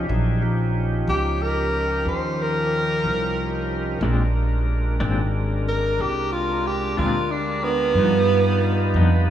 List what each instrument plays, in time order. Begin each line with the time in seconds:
0.09 upright bass A#1, tonewheel organ F#3 D4 E4 G#4
0.42 tonewheel organ F3 C#4 D#4 G4
1.07 upright bass C#2, tenor saxophone G4
1.42 tenor saxophone A#4
2.05 upright bass D#2, tenor saxophone C5
2.42 tenor saxophone A#4
3.04 upright bass C2
4.01 upright bass A#1, clean electric guitar A#2 G#3 C4 D4, tonewheel organ G#3 D4 A#4
5.00 upright bass G#1, clean electric guitar A#2 G#3 C4 D4
5.69 tenor saxophone A#4
5.99 upright bass C2, tenor saxophone G4
6.32 tenor saxophone F4
6.67 tenor saxophone G4
6.97 upright bass D2, clean electric guitar A#2 G#3 C4 D4, tenor saxophone F4
7.31 tenor saxophone D4
7.64 tenor saxophone B3
7.95 upright bass G2, clean electric guitar G2 F3 B3, tonewheel organ G3 F4 B4
7.99 clean electric guitar D#4, tonewheel organ D#4
8.94 upright bass F2, clean electric guitar G2 F3 B3 D#4